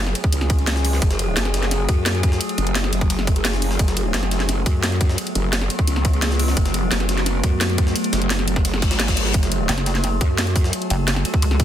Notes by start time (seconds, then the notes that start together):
Already playing: F#1 F#3 A3 G#4
0.07 snare
0.15 closed hi-hat, ride
0.24 kick, ride
0.33 C#2, closed hi-hat, ride
0.41 snare
0.50 kick, closed hi-hat, ride
0.59 ride
0.67 snare, closed hi-hat, ride
0.76 snare
0.85 closed hi-hat, open hi-hat
0.93 snare
1.02 F#1, kick, closed hi-hat, ride
1.11 snare, closed hi-hat
1.19 closed hi-hat, ride
1.37 F#1, snare, closed hi-hat, ride
1.45 snare, ride
1.54 snare, closed hi-hat, ride
1.63 snare, ride
1.71 snare, closed hi-hat, ride
1.89 F#2, kick, closed hi-hat, ride
2.06 snare, closed hi-hat, ride
2.15 ride
2.23 kick, closed hi-hat, ride
2.32 snare
2.41 closed hi-hat, ride
2.49 closed hi-hat
2.58 F#1, closed hi-hat, ride
2.67 closed hi-hat
2.75 snare, closed hi-hat, ride
2.84 snare
2.93 F#1, closed hi-hat, ride
3.01 kick, ride
3.10 closed hi-hat, ride
3.19 snare
3.27 kick, closed hi-hat, ride
3.36 closed hi-hat, ride
3.45 snare, closed hi-hat, ride
3.53 snare
3.62 closed hi-hat, open hi-hat
3.71 snare
3.79 F#1 B3, kick, closed hi-hat, ride
3.88 snare, closed hi-hat
3.97 closed hi-hat, ride
4.14 F#1, snare, closed hi-hat, ride
4.23 snare, ride
4.31 snare, closed hi-hat, ride
4.40 snare, ride
4.49 snare, closed hi-hat, ride
4.66 F#2, kick, closed hi-hat, ride
4.83 snare, closed hi-hat, ride
4.92 ride
5.01 kick, closed hi-hat, ride
5.09 snare
5.18 closed hi-hat, ride
5.27 closed hi-hat
5.35 F#1, closed hi-hat, ride
5.53 snare, closed hi-hat, ride
5.61 snare
5.70 closed hi-hat, ride
5.79 kick, ride
5.87 C#2, closed hi-hat, ride
5.96 snare
6.05 kick, closed hi-hat, ride
6.13 ride
6.22 snare, closed hi-hat, ride
6.31 snare
6.39 closed hi-hat, open hi-hat
6.48 snare
6.57 F#1, kick, closed hi-hat, ride
6.66 snare, closed hi-hat
6.74 closed hi-hat, ride
6.91 F#1, snare, closed hi-hat, ride
7.00 snare, ride
7.09 snare, closed hi-hat, ride
7.17 snare, ride
7.26 snare, closed hi-hat, ride
7.43 F#2, kick, closed hi-hat, ride
7.61 snare, closed hi-hat, ride
7.69 ride
7.78 kick, closed hi-hat, ride
7.87 snare
7.96 closed hi-hat, ride
8.04 closed hi-hat
8.13 F#1, snare, closed hi-hat, ride
8.22 closed hi-hat
8.30 snare, closed hi-hat, ride
8.39 snare
8.47 F#1, closed hi-hat, ride
8.56 kick, snare, ride
8.65 closed hi-hat, ride, reverse cymbal
8.74 snare
8.82 G#1, kick, snare, closed hi-hat, ride
8.91 snare, closed hi-hat, ride
9.00 snare, closed hi-hat, ride
9.08 kick, snare, ride
9.17 closed hi-hat, open hi-hat
9.26 snare
9.34 F#1 A4, kick, closed hi-hat, ride
9.43 snare, closed hi-hat
9.52 closed hi-hat, ride
9.69 F#1, snare, closed hi-hat, ride
9.78 snare, ride
9.86 snare, closed hi-hat, ride
9.95 snare, ride
10.04 snare, closed hi-hat, ride
10.21 F#2, kick, closed hi-hat, ride
10.38 snare, closed hi-hat, ride
10.47 ride
10.56 kick, open hi-hat, ride
10.64 snare
10.73 closed hi-hat, ride
10.82 closed hi-hat
10.90 F#1, closed hi-hat, ride
11.08 snare, closed hi-hat, ride
11.16 snare
11.25 closed hi-hat, ride
11.34 kick, ride
11.42 C#2, closed hi-hat, ride
11.51 snare
11.60 kick, closed hi-hat, ride